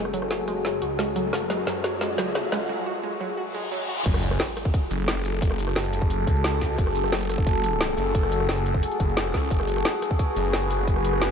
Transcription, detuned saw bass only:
Already playing: F#1
0.82 C#2
1.33 F#1
1.67 F#2
2.18 C#2
2.52 C#2
4.06 F#1
4.91 F#1
6.27 C#2
6.78 F#1
7.12 F#1
7.98 F#1
9.00 F#1
9.34 C#2
9.51 F#1
10.36 F#1

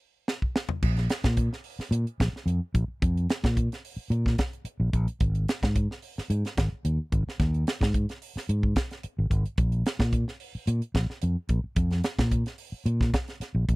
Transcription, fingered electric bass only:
0.83 A#1
1.24 A#2
1.79 muted fingered electric bass stroke
1.91 A#2
2.20 A#1
2.33 muted fingered electric bass stroke
2.46 F2
2.74 A#1
2.88 muted fingered electric bass stroke
3.02 F2
3.44 A#2
3.97 muted fingered electric bass stroke
4.10 A#2
4.65 muted fingered electric bass stroke
4.80 A#1
4.93 A#1
5.21 G#1
5.62 G#2
6.18 muted fingered electric bass stroke
6.30 G#2
6.57 G#1
6.72 muted fingered electric bass stroke
6.85 D#2
7.12 G#1
7.27 muted fingered electric bass stroke
7.40 D#2
7.81 G#2
8.36 muted fingered electric bass stroke
8.49 G#2
9.04 muted fingered electric bass stroke
9.18 G#1
9.30 G#1
9.58 A#1
9.99 A#2
10.55 muted fingered electric bass stroke
10.67 A#2
10.94 A#1
11.10 muted fingered electric bass stroke
11.23 F2
11.49 A#1
11.64 muted fingered electric bass stroke
11.77 F2
12.19 A#2
12.72 muted fingered electric bass stroke
12.86 A#2
13.40 muted fingered electric bass stroke
13.55 A#1
13.69 A#1

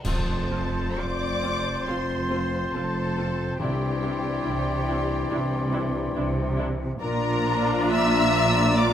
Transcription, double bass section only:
0.04 F1
0.98 F1
1.86 F1
2.73 F1
3.59 C2
4.46 C2
5.30 C2
6.15 C2
7.01 A#1

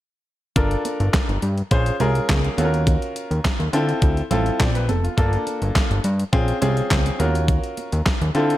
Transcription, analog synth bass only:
0.56 G1
1.00 G1
1.29 G1
1.43 G2
1.71 A#1
2.00 C2
2.29 C#2
2.58 D#2
3.31 D#2
3.60 D#2
3.73 D3
4.02 D2
4.31 A1
4.60 A#1
4.89 F1
5.18 G1
5.62 G1
5.91 G1
6.04 G2
6.33 A#1
6.62 C2
6.91 C#2
7.20 D#2
7.93 D#2
8.21 D#2
8.35 D3

